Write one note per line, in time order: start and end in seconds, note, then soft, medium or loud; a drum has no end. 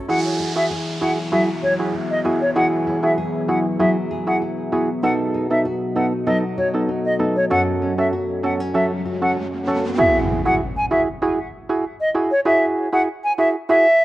0.00 0.43 F#3 medium
0.00 0.15 A3 medium
0.00 0.15 C#4 medium
0.08 2.55 E3 medium
0.08 4.99 F#3 medium
0.08 7.47 B3 medium
0.08 0.52 E4 medium
0.08 0.52 F#4 medium
0.08 4.99 G#4 medium
0.08 0.52 G#4 loud
0.08 0.69 G#4 medium
0.08 4.99 E5 medium
0.08 0.19 F#5 medium
0.08 downlifter medium
0.40 1.00 E4 medium
0.56 0.71 E4 medium
0.56 0.71 F#4 medium
0.56 0.71 G#4 medium
0.56 0.65 E5 medium
0.70 1.62 G#4 medium
1.01 1.18 E4 medium
1.01 1.93 E4 medium
1.01 1.18 F#4 medium
1.01 1.19 G#4 medium
1.01 1.12 F#5 medium
1.32 3.79 F#3 medium
1.32 1.49 E4 medium
1.32 1.49 F#4 medium
1.32 1.50 G#4 loud
1.32 1.43 E5 medium
1.63 2.55 G#4 medium
1.63 1.73 C#5 medium
1.79 1.95 E4 medium
1.79 1.95 F#4 medium
1.79 1.95 G#4 medium
1.94 2.86 E4 medium
2.11 2.20 D#5 medium
2.25 4.72 B3 medium
2.25 2.42 E4 medium
2.25 2.42 F#4 medium
2.25 2.42 G#4 medium
2.42 2.51 C#5 medium
2.56 5.03 E3 medium
2.56 2.99 E4 medium
2.56 2.99 F#4 medium
2.56 3.00 G#4 loud
2.56 3.17 G#4 medium
2.56 2.66 F#5 medium
2.87 3.48 E4 medium
3.03 3.18 E4 medium
3.03 3.19 F#4 medium
3.03 3.19 G#4 medium
3.03 3.12 E5 medium
3.18 4.10 G#4 medium
3.49 3.66 E4 medium
3.49 4.40 E4 medium
3.49 3.66 F#4 medium
3.49 3.66 G#4 medium
3.49 3.59 F#5 medium
3.79 6.27 F#3 medium
3.79 3.97 E4 medium
3.79 3.97 F#4 medium
3.79 3.97 G#4 loud
3.79 3.90 E5 medium
4.11 5.03 G#4 medium
4.27 4.42 E4 medium
4.27 4.42 F#4 medium
4.27 4.43 G#4 medium
4.27 4.36 F#5 medium
4.42 5.10 E4 medium
4.72 7.19 B3 medium
4.72 4.89 E4 medium
4.72 4.90 F#4 medium
4.72 4.90 G#4 medium
5.03 7.51 B2 medium
5.03 9.94 F#3 medium
5.03 5.47 B3 medium
5.03 5.47 D#4 medium
5.03 5.65 F#4 medium
5.03 9.94 A4 medium
5.03 5.47 A4 loud
5.03 7.48 D#5 medium
5.03 5.14 F#5 medium
5.34 5.95 D#4 medium
5.51 5.66 B3 medium
5.51 5.66 D#4 medium
5.51 5.66 A4 medium
5.51 5.60 E5 medium
5.65 6.58 F#4 medium
5.96 6.13 B3 medium
5.96 6.88 D#4 medium
5.96 6.13 D#4 medium
5.96 6.13 A4 medium
5.96 6.06 F#5 medium
6.27 8.74 F#3 medium
6.27 6.44 B3 medium
6.27 6.44 D#4 medium
6.27 6.44 A4 loud
6.27 6.37 D#5 medium
6.58 7.51 F#4 medium
6.58 6.68 C#5 medium
6.74 6.90 B3 medium
6.74 6.90 D#4 medium
6.74 6.90 A4 medium
6.89 7.57 D#4 medium
7.05 7.14 D#5 medium
7.20 8.47 A3 medium
7.20 7.37 B3 medium
7.20 7.37 D#4 medium
7.20 7.37 A4 medium
7.36 7.45 C#5 medium
7.50 9.98 F#2 medium
7.50 7.94 C#4 medium
7.50 9.96 C#4 medium
7.50 7.94 F#4 medium
7.50 8.12 F#4 medium
7.50 7.94 A4 loud
7.50 9.96 C#5 medium
7.50 7.61 F#5 medium
7.50 riser medium
7.82 8.43 C#4 medium
7.98 8.13 C#4 medium
7.98 8.13 F#4 medium
7.98 8.14 A4 medium
7.98 8.07 E5 medium
8.13 9.05 F#4 medium
8.43 8.60 B3 medium
8.43 8.60 C#4 medium
8.43 8.61 F#4 medium
8.43 8.61 A4 medium
8.43 8.54 F#5 medium
8.60 9.35 C#4 medium
8.74 10.55 F#3 medium
8.74 8.91 C#4 medium
8.74 8.92 F#4 medium
8.74 8.92 A4 loud
8.74 8.85 E5 medium
9.05 10.55 F#4 medium
9.21 9.37 C#4 medium
9.21 9.37 F#4 medium
9.21 9.37 A4 medium
9.21 9.31 F#5 medium
9.36 10.05 C#4 medium
9.67 10.05 A3 medium
9.67 9.84 C#4 medium
9.67 9.84 F#4 medium
9.67 9.85 A4 medium
9.98 10.41 E4 loud
9.98 10.42 F#4 medium
9.98 10.42 G#4 loud
9.98 10.18 E5 loud
9.98 impact medium
10.45 10.61 E4 medium
10.45 10.61 F#4 medium
10.45 10.61 G#4 medium
10.45 10.55 F#5 medium
10.77 10.86 G#5 medium
10.91 11.08 E4 medium
10.91 11.08 F#4 medium
10.91 11.08 G#4 medium
10.91 11.01 E5 medium
11.22 11.39 E4 medium
11.22 11.39 F#4 medium
11.22 11.39 G#4 loud
11.69 11.84 E4 medium
11.69 11.85 F#4 medium
11.69 11.85 G#4 medium
12.01 12.09 D#5 medium
12.14 12.32 E4 medium
12.14 12.32 F#4 medium
12.14 12.32 G#4 medium
12.31 12.40 C#5 medium
12.45 12.89 E4 loud
12.45 12.89 F#4 medium
12.45 12.89 G#4 loud
12.45 12.65 E5 loud
12.93 13.08 E4 medium
12.93 13.08 F#4 medium
12.93 13.08 G#4 medium
12.93 13.02 F#5 medium
13.24 13.33 G#5 medium
13.38 13.55 E4 medium
13.38 13.56 F#4 medium
13.38 13.56 G#4 medium
13.38 13.49 E5 medium
13.69 13.86 E4 medium
13.69 13.86 F#4 medium
13.69 13.87 G#4 loud
13.69 14.05 E5 loud